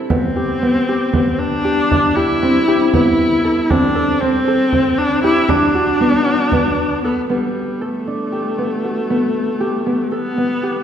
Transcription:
Already playing: harp C4 D4 G4 A4
0.10 harp B3, viola C4, frame drum
0.36 harp G4
0.62 harp B3, frame drum
0.89 harp G4
1.13 harp B3, frame drum
1.39 viola D4
1.65 harp G4
1.91 harp D4, frame drum
2.16 viola E4, harp G4
2.42 harp C4, frame drum
2.68 harp G4
2.93 harp B3, viola E4, frame drum
3.44 harp A4
3.70 harp C4, viola D4, frame drum
3.95 harp A4
4.21 viola C4, harp C4, frame drum
4.48 harp A4
4.73 harp C4, frame drum
4.98 viola D4
5.23 viola E4, harp G4
5.49 viola D4, harp D4, frame drum
5.75 harp F#4
6.00 harp B3
6.25 harp F#4
6.52 harp B3, frame drum
7.04 viola B3, harp A4, frame drum
7.30 viola G3, harp B3
7.81 viola A3, harp A4
8.07 harp D4
8.32 harp G4
8.58 harp B3
8.84 harp F#4
9.10 harp B3
9.60 harp G4
9.86 harp B3
10.11 viola B3, harp A4
10.37 harp B3
10.63 harp G4

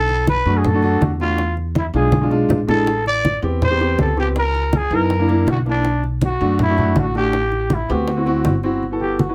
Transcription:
Already playing: upright bass B1, trumpet A4
0.09 high bongo, high conga
0.27 trumpet B4, high bongo, high conga
0.45 upright bass F#2, grand piano A3 D4 F#4, high conga
0.57 trumpet G#4
0.65 trumpet A4, high bongo, high conga, low conga
0.73 grand piano A3 D4 F#4
0.82 grand piano A3 D4 F#4, high bongo, high conga
1.01 upright bass E2, high bongo, low bongo, high conga
1.20 grand piano A3 D4 F#4, trumpet F4, high bongo, high conga
1.38 high bongo, high conga
1.57 high bongo, high conga
1.75 trumpet E4, high bongo, high conga
1.93 upright bass B1, grand piano G#3 D4 F4, trumpet G#4, high conga
2.12 high bongo, high conga
2.21 grand piano G#3 D4 F4
2.30 grand piano G#3 D4 F4, high bongo
2.49 upright bass A1, high bongo, low bongo, low conga
2.67 grand piano G#3 D4 E4, trumpet A4, high bongo, low conga
2.87 high bongo, high conga
3.06 trumpet D5, high bongo, high conga
3.25 high bongo, high conga
3.42 upright bass E2, grand piano B3 C4 G4, high conga
3.62 trumpet C5, high bongo, high conga, low conga
3.70 grand piano B3 C4 G4
3.80 grand piano B3 C4 G4, high bongo, high conga
3.98 upright bass C#2, trumpet A4, high bongo, low bongo, high conga
4.16 grand piano B3 C4 G4, trumpet G4, high bongo, high conga
4.36 trumpet A#4, high bongo, high conga
4.54 high bongo, high conga
4.73 trumpet G#4, high bongo, high conga
4.90 upright bass F#2, grand piano B3 D#4 E4, trumpet A#4, high conga
5.10 high bongo, high conga
5.19 grand piano A#3 D4 E4
5.28 grand piano A#3 D4 E4, high bongo, high conga
5.46 upright bass B1, high bongo, low bongo, high conga
5.51 trumpet F#4
5.66 grand piano A#3 D4 E4, high bongo
5.70 trumpet D4
5.84 high bongo, high conga
6.03 high bongo, high conga
6.21 trumpet F#4, high bongo, high conga
6.40 upright bass F#2, grand piano A3 D4 F#4, high conga
6.59 trumpet E4, high bongo, high conga, low conga
6.68 grand piano A3 D4 F#4
6.76 grand piano A3 D4 F#4, high bongo, high conga, low conga
6.96 upright bass A1, trumpet F#4, high bongo, low bongo, high conga
7.14 grand piano A3 D4 F#4, trumpet G4, high bongo, high conga
7.33 high bongo, high conga
7.52 high bongo, high conga
7.70 high bongo, high conga
7.74 trumpet E4
7.89 upright bass D2, grand piano B3 C4 G4, trumpet F#4, high conga
8.07 high bongo, high conga
8.17 grand piano C4 E4 F#4
8.26 grand piano C4 E4 F#4, high bongo, high conga
8.45 upright bass G1, high bongo, low bongo, high conga
8.63 grand piano C4 E4 F#4, high bongo
8.83 high conga
8.91 grand piano B3 E4 F#4 A4
9.01 trumpet G4, high conga
9.19 trumpet F#4, high conga
9.28 grand piano B3 E4 F#4 B4

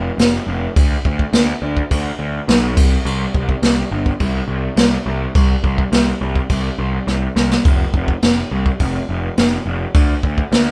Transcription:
0.18 picked electric bass F1, snare, crash
0.47 picked electric bass F1
0.76 picked electric bass D2, kick, crash
1.05 picked electric bass D2, kick
1.19 kick
1.33 picked electric bass D2, snare, crash
1.62 picked electric bass D2
1.77 kick
1.91 picked electric bass D2, kick, crash
2.19 picked electric bass D2
2.48 picked electric bass B1, snare, crash
2.77 picked electric bass C2, kick, crash
3.05 picked electric bass C2, crash
3.35 picked electric bass C2, kick
3.49 kick
3.62 picked electric bass C2, snare, crash
3.91 picked electric bass G1
4.06 kick
4.20 picked electric bass C2, kick, crash
4.48 picked electric bass C2
4.76 picked electric bass C2, snare, crash
5.06 picked electric bass C2
5.35 picked electric bass C2, kick, crash
5.64 picked electric bass C2, kick
5.78 kick
5.92 picked electric bass C2, snare, crash
6.21 picked electric bass C2
6.36 kick
6.49 picked electric bass C2, kick, crash
6.78 picked electric bass C2
7.07 picked electric bass C2, snare
7.36 picked electric bass C2, snare
7.51 snare
7.65 picked electric bass F1, kick, crash
7.94 picked electric bass F1, kick
8.08 kick
8.22 picked electric bass F1, snare, crash
8.51 picked electric bass C2
8.66 kick
8.80 picked electric bass F1, kick, crash
9.09 picked electric bass F1
9.37 picked electric bass F1, snare, crash
9.66 picked electric bass F1
9.95 picked electric bass D2, kick, crash
10.23 picked electric bass D2, kick
10.38 kick
10.52 picked electric bass D2, snare, crash

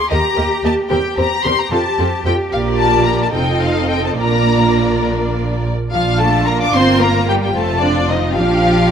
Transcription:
0.00 violin section C6
0.10 double bass section D#2, viola section A#3 G4, cello section G4, violin section A#4 D#5 A#5
0.36 double bass section D#2, viola section A#3 G4, violin section A#4 D#5
0.64 double bass section D#2, viola section A#3 G4, violin section A#4 D#5 A5
0.89 double bass section E2, viola section C4 G4, cello section G4, violin section A#4 C5 G5
1.17 double bass section E2, viola section C4 G4, violin section A#4 C5 A#5
1.44 double bass section E2, viola section C4 G4, violin section A#4 C5 C6
1.60 violin section A#5
1.71 double bass section F2, viola section C4 F4, violin section A4 C5 A5
1.98 double bass section F2, viola section C4 F4, violin section A4 C5
2.25 double bass section F2, viola section C4 F4, violin section A4 C5 G5
2.52 double bass section A#1, viola section A#3 F4, violin section A#4 D5 F5
2.78 violin section A5
3.07 violin section A#5
3.23 violin section A5
3.34 double bass section F1, viola section C4 F4, cello section D#4, violin section A4 D#5 G5
3.63 violin section F5
3.90 violin section G5
4.05 violin section A5
4.19 double bass section A#1, viola section A#3 F4, cello section D4, violin section A#4 D5 A#5
5.92 double bass section A#1, cello section F3, violin section D4 F4 F5, viola section F4
6.19 cello section A3, viola section A4, violin section A5
6.47 cello section A#3, viola section A#4, violin section A#5
6.61 cello section D4, viola section D5, violin section D6
6.74 double bass section G1, violin section A#3 C6, cello section C4, viola section C5
7.01 cello section A#3, viola section A#4, violin section A#5
7.28 cello section G3, viola section G4, violin section G5
7.42 cello section G3, viola section G4, violin section G5
7.55 double bass section F1, cello section A3, violin section C4 F4 A5, viola section A4
7.82 cello section D3, viola section D4, violin section D5
8.09 cello section D#3, viola section D#4, violin section D#5
8.34 double bass section A#1, cello section F3, violin section D4 G4 F5, viola section F4

